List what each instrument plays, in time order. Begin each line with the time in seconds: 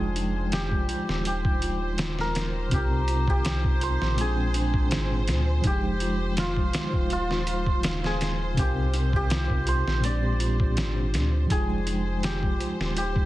Already playing: sub bass F1, tine electric piano F3 G#3 D#4 G5, santur D4 F4 G#4, celesta F4, violin section C5
0.16 celesta D#4, closed hi-hat
0.52 celesta F4, santur G4, snare, closed hi-hat
0.71 kick
0.89 celesta F4, closed hi-hat
1.08 sub bass D#1, snare
1.25 celesta D#4, santur G4, closed hi-hat
1.45 kick
1.62 celesta F4, closed hi-hat
1.98 celesta F4, snare, closed hi-hat
2.19 santur A#4, snare
2.35 celesta D#4, snare, closed hi-hat
2.69 sub bass C2, tine electric piano C3 C4, celesta F4, kick, closed hi-hat
2.74 tine electric piano D#4 A#4, santur G4
3.08 celesta F4, closed hi-hat
3.28 santur G4, kick
3.45 celesta D#4, snare, closed hi-hat
3.64 kick
3.81 celesta F4, santur C5, closed hi-hat
4.01 sub bass A#1, snare
4.16 tine electric piano A#2 G#3, celesta F4, closed hi-hat
4.20 tine electric piano C4 D4, santur G#4
4.25 tine electric piano G5
4.54 celesta D4, closed hi-hat
4.74 kick
4.91 sub bass G#1, celesta F4, snare, closed hi-hat
5.27 sub bass D2, celesta F4, snare, closed hi-hat
5.61 sub bass F1, tine electric piano F3 D#4, celesta D#4, kick, closed hi-hat
5.67 santur G4, tine electric piano G5
6.00 celesta F4, closed hi-hat
6.37 celesta F4, santur F4, snare, closed hi-hat
6.57 kick
6.73 celesta D#4, snare, closed hi-hat
6.93 sub bass D#1, kick
7.10 celesta F4, santur F4, closed hi-hat
7.31 snare
7.47 celesta F4, closed hi-hat
7.66 kick
7.83 celesta D#4, snare, closed hi-hat
8.04 santur G#4, snare
8.20 celesta F4, snare, closed hi-hat
8.54 sub bass C2, tine electric piano C3 C4, celesta F4, kick, closed hi-hat
8.59 tine electric piano D#4 A#4, santur G4
8.93 celesta D#4, closed hi-hat
9.13 santur G4, kick
9.30 celesta F4, snare, closed hi-hat
9.50 kick
9.67 celesta F4, santur C5, closed hi-hat
9.87 sub bass A#1, snare
10.00 tine electric piano A#2 G#3, celesta D4, closed hi-hat
10.05 tine electric piano C4 D4, santur D5
10.09 tine electric piano G4
10.40 celesta F4, closed hi-hat
10.60 kick
10.76 sub bass G#1, celesta F4, snare, closed hi-hat
11.13 sub bass D2, celesta D4, snare, closed hi-hat
11.47 sub bass F1, tine electric piano F3 D#4, celesta F4, violin section C5, kick, closed hi-hat
11.51 santur G#4, tine electric piano G5
11.56 tine electric piano G#3
11.87 celesta D#4, closed hi-hat
12.23 celesta F4, santur G4, snare, closed hi-hat
12.43 kick
12.60 celesta F4, closed hi-hat
12.79 sub bass D#1, snare
12.96 celesta D#4, santur G4, closed hi-hat
13.16 kick